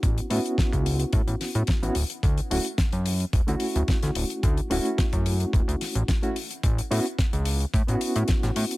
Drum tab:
HH |xxoxxxoxxxoxxxox|xxoxxxoxxxoxxxox|xxoxxxoxxxoxxxox|xxoxxxoxxxoxxxox|
SD |----o-----o-o---|----o-------oo--|----o-----o-o---|----o-------oo--|
BD |o---oo--o---o---|o---o---o---o---|o---oo--o---o---|o---o---o---o---|